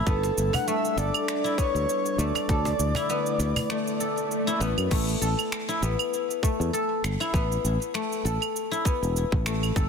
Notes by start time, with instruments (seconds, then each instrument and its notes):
Already playing: guzheng A3 E4 A4
0.06 fretless electric bass G1, ambient pad G3 D4 A4, guzheng B3, soft synth lead A4, kick, shaker
0.23 cajon slap, shaker
0.38 fretless electric bass G1, shaker
0.53 soft synth lead F#5, cajon bass, cajon slap, claves, shaker
0.67 guzheng A3, soft synth lead E5, shaker
0.85 shaker
0.97 fretless electric bass G1, guzheng A4, soft synth lead D5, cajon slap, shaker
1.14 claves, shaker
1.28 finger snap, shaker
1.44 guzheng E4, shaker
1.58 guzheng B3, soft synth lead C#5, kick, shaker
1.75 fretless electric bass D2, shaker
1.89 shaker
2.06 shaker
2.18 fretless electric bass D2, guzheng A3, soft synth lead D5, shaker
2.35 cajon slap, claves, shaker
2.49 fretless electric bass D2, ambient pad D3 A3 E4, guzheng A4, kick, shaker
2.65 cajon bass, cajon slap, shaker
2.79 fretless electric bass D2, shaker
2.95 guzheng E4, cajon bass, cajon slap, claves, shaker
3.10 guzheng B3, shaker
3.26 shaker
3.39 fretless electric bass D2, cajon slap, shaker
3.56 cajon bass, claves, shaker
3.70 guzheng A3, finger snap, swell, shaker
3.87 shaker
4.00 guzheng A4, shaker
4.18 shaker
4.31 shaker
4.47 guzheng E4, shaker
4.60 fretless electric bass A1, guzheng B3, shaker
4.78 fretless electric bass F#2, claves, shaker
4.91 fretless electric bass A1, guzheng A3, kick, crash, shaker
5.09 shaker
5.21 fretless electric bass A1, guzheng A4, shaker
5.39 claves, shaker
5.52 finger snap, shaker
5.69 guzheng E4, shaker
5.82 fretless electric bass A1, guzheng B3, shaker
5.99 claves, shaker
6.14 shaker
6.31 shaker
6.43 guzheng A3, kick, shaker
6.60 fretless electric bass E2, shaker
6.73 guzheng A4, shaker
7.04 fretless electric bass G1, finger snap, shaker
7.20 guzheng E4, claves, shaker
7.34 fretless electric bass A1, guzheng B3, kick, shaker
7.52 shaker
7.65 fretless electric bass A1, shaker
7.82 shaker
7.94 guzheng A3, finger snap, shaker
8.12 shaker
8.25 fretless electric bass A1, guzheng A4, shaker
8.42 claves, shaker
8.56 shaker
8.71 guzheng E4, shaker
8.85 guzheng B3, kick, shaker
9.03 fretless electric bass E1, shaker
9.16 shaker
9.32 fretless electric bass A1, kick
9.46 guzheng A3, finger snap, shaker
9.63 claves, shaker
9.76 fretless electric bass G1, guzheng A4, kick, shaker